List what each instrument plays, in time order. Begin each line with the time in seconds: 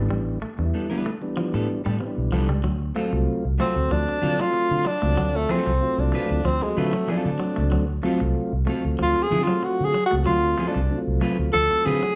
Already playing: tonewheel organ E3 G3 B3 D4
0.10 fingered electric bass A1, clean electric guitar G3
0.42 clean electric guitar A3
0.58 fingered electric bass E2, tonewheel organ E3 G3 B3 D4, muted clean electric guitar stroke
0.66 tonewheel organ E4
0.74 clean electric guitar G3 B3 D4 A4
0.90 clean electric guitar G3 B3 D4 B4
1.06 clean electric guitar A3
1.21 tonewheel organ E3 G3 B3 D4
1.37 clean electric guitar F3
1.54 fingered electric bass A2, clean electric guitar G3 B3 D4 A4, muted clean electric guitar stroke
1.85 fingered electric bass A2, clean electric guitar G3 B3 D4 A4
1.99 tonewheel organ E3 G3 B3 C4, muted clean electric guitar stroke
2.07 tonewheel organ D4
2.18 fingered electric bass B1
2.32 fingered electric bass C2, clean electric guitar F3 G3 B3 D4 A4
2.49 fingered electric bass C#2, clean electric guitar G3
2.64 fingered electric bass D2, clean electric guitar F#3
2.95 tonewheel organ F#3 A3 C4 F4, clean electric guitar F#3 A3 C4 F4 A4
3.13 fingered electric bass C2, muted clean electric guitar stroke
3.45 fingered electric bass C2
3.58 tonewheel organ F#3 A3 C4 F#4, clean electric guitar F#3 A3 C4 F4 A4, tenor saxophone C4
3.76 fingered electric bass D2
3.91 fingered electric bass D2, clean electric guitar F3, tenor saxophone D4
4.09 muted clean electric guitar stroke
4.22 fingered electric bass D3, clean electric guitar F#3 C4 F4 A4
4.38 tonewheel organ F#3 A3 C4 F4, clean electric guitar F#3, tenor saxophone F4
4.54 muted clean electric guitar stroke
4.71 fingered electric bass D3
4.85 clean electric guitar F#3, tenor saxophone D4
5.02 fingered electric bass C#2, tonewheel organ F#3 A3 C4 F4, clean electric guitar A3
5.17 fingered electric bass D2, clean electric guitar F#3
5.36 tenor saxophone A3
5.49 clean electric guitar F#3 A3 C4 F4 A4, tenor saxophone C4
5.66 fingered electric bass C2, muted clean electric guitar stroke
5.81 tonewheel organ F#3 A3 C4 F4
5.98 fingered electric bass C2, tenor saxophone D4
6.12 clean electric guitar F#3 A3 C4 F4 B4
6.31 fingered electric bass D2
6.45 fingered electric bass D2, clean electric guitar F3, tenor saxophone C4
6.61 tonewheel organ F#3 A3 C4 F4, tenor saxophone G#3, muted clean electric guitar stroke
6.69 tonewheel organ F#4
6.77 fingered electric bass D3, clean electric guitar F#3 C4 F4 B4, tenor saxophone A3
6.93 clean electric guitar F#3
7.07 clean electric guitar F#3 C4 F4 A4, tenor saxophone D4, muted clean electric guitar stroke
7.25 fingered electric bass D3, tonewheel organ F#3 A3 C4 D4
7.40 clean electric guitar F#3
7.56 fingered electric bass C#2, clean electric guitar A3
7.72 fingered electric bass D2, clean electric guitar F#3
8.03 tonewheel organ F#3 A3 C4 F4, clean electric guitar F#3 A3 C4 F4 A4
8.20 fingered electric bass C2, muted clean electric guitar stroke
8.53 fingered electric bass C2
8.65 tonewheel organ F#3 A3 C4 F4, clean electric guitar F#3 A3 C4 F4 A4
8.85 fingered electric bass D2
8.99 fingered electric bass D2, clean electric guitar F3, tenor saxophone F4
9.16 muted clean electric guitar stroke
9.22 tenor saxophone G#4
9.31 fingered electric bass D3, clean electric guitar F#3 C4 F4 A4
9.43 tenor saxophone F4
9.47 clean electric guitar F#3, tonewheel organ F#3 A3 C4 F4
9.63 tenor saxophone F#4, muted clean electric guitar stroke
9.81 fingered electric bass D3, tenor saxophone G#4
9.94 clean electric guitar F#3
10.06 tenor saxophone F#4
10.11 fingered electric bass C#2, tonewheel organ F#3 A3 C4 F4, clean electric guitar A3
10.26 fingered electric bass D2, clean electric guitar F#3, tenor saxophone F4
10.58 clean electric guitar F#3 A3 C4 F4 A4
10.68 tenor saxophone D4
10.74 fingered electric bass C2, muted clean electric guitar stroke
10.90 tonewheel organ F#3 A3 C4 D4
10.98 tonewheel organ F4
11.08 fingered electric bass C2
11.21 clean electric guitar F#3 A3 C4 F4 B4
11.39 fingered electric bass D2
11.53 fingered electric bass D2, clean electric guitar F3, tenor saxophone A4
11.70 tonewheel organ F#3 A3 C4 F4, muted clean electric guitar stroke
11.85 fingered electric bass D3, clean electric guitar F#3 C4 F4 B4, tenor saxophone G#4
12.03 clean electric guitar F#3